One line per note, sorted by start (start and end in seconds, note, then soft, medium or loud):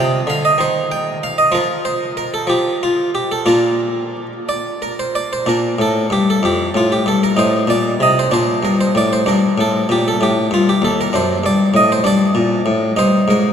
0.00 0.19 C3 medium
0.00 0.55 F4 soft
0.00 0.29 G5 medium
0.27 0.50 D3 medium
0.27 0.44 F5 medium
0.45 0.60 D#5 medium
0.58 1.25 D#3 medium
0.58 0.86 C5 medium
0.92 1.17 G5 medium
1.23 1.38 F5 medium
1.38 1.53 D#5 medium
1.52 2.20 F3 medium
1.52 2.42 F4 soft
1.52 1.84 A#4 medium
1.85 2.11 C5 medium
2.17 2.32 A#4 medium
2.34 2.48 A4 medium
2.47 3.18 F3 medium
2.47 2.76 G4 medium
2.83 3.09 F4 medium
3.15 3.30 G4 medium
3.32 3.47 A4 medium
3.46 4.16 A#2 soft
3.46 4.27 D4 soft
3.46 4.26 F4 soft
3.46 4.33 A#4 medium
4.49 4.81 D5 medium
4.82 4.98 A#4 medium
4.99 5.15 C5 medium
5.15 5.31 D5 medium
5.33 5.48 C5 medium
5.46 5.72 A#2 medium
5.46 7.33 D4 soft
5.46 5.75 A#4 medium
5.79 6.04 A2 soft
5.79 6.07 A4 medium
6.10 6.36 G2 medium
6.10 6.27 G4 medium
6.30 6.44 A4 medium
6.43 6.68 F2 medium
6.43 6.71 G4 medium
6.74 6.99 A2 soft
6.74 6.91 F4 medium
6.92 7.07 G4 medium
7.06 7.31 G2 soft
7.06 7.22 A4 medium
7.23 7.38 A#4 medium
7.36 7.62 A2 medium
7.36 8.28 D#4 soft
7.36 7.70 C5 medium
7.67 7.93 A#2 medium
7.67 8.01 D5 medium
8.00 8.26 C3 medium
8.00 8.17 D#5 medium
8.19 8.32 C5 medium
8.31 8.57 A#2 medium
8.31 9.22 D4 soft
8.31 8.64 C5 medium
8.63 8.88 G2 soft
8.63 8.80 A#4 medium
8.81 8.96 C5 medium
8.95 9.20 A2 soft
8.95 9.12 D5 medium
9.13 9.28 C5 medium
9.26 9.52 G2 medium
9.26 11.09 D4 soft
9.26 9.59 A#4 medium
9.58 9.83 A2 medium
9.58 9.86 A4 medium
9.89 10.14 A#2 medium
9.89 10.06 G4 medium
10.08 10.22 A4 medium
10.21 10.46 A2 medium
10.21 10.48 G4 medium
10.51 10.76 G2 medium
10.51 10.68 F4 medium
10.69 10.84 G4 medium
10.82 11.07 D#2 soft
10.82 10.99 A4 medium
11.01 11.15 A#4 medium
11.13 11.38 F#2 medium
11.13 12.01 D4 soft
11.13 11.40 C5 medium
11.44 11.68 G2 medium
11.44 11.71 D5 medium
11.74 11.98 A2 medium
11.74 11.91 D#5 medium
11.92 12.06 C5 medium
12.04 12.29 G2 medium
12.04 12.93 D4 soft
12.04 12.37 D5 medium
12.35 12.60 A#2 medium
12.66 12.91 A2 medium
12.96 13.21 G2 medium
12.96 13.53 D#4 soft
12.96 13.24 C5 medium
13.28 13.52 G#2 medium
13.28 13.53 A#4 medium